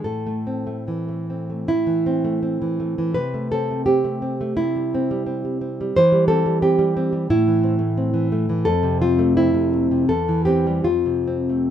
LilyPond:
\new Staff \with { instrumentName = "Nylon-string guitar" } { \time 2/4 \key a \minor \tempo 4 = 85 << { a'4 r4 | e'2 | b'8 a'8 g'4 | e'2 |
c''8 a'8 g'4 | \key f \lydian e'2 | a'8 f'8 e'4 | a'8 g'8 f'4 | } \\ { a,16 a16 c'16 a16 e16 a16 c'16 a16 | a,16 e16 c'16 a16 c'16 e16 a16 e16 | c16 a16 c'16 a16 c'16 a16 c'16 a16 | c16 g16 c'16 g16 c'16 g16 c'16 g16 |
e16 g16 c'16 g16 c'16 g16 c'16 g16 | a,16 e16 c'16 a16 c'16 e16 a16 e16 | f,16 c16 c'16 a16 c'16 c16 a16 c16 | e,16 e16 c'16 g16 f,16 c16 c'16 a16 | } >> }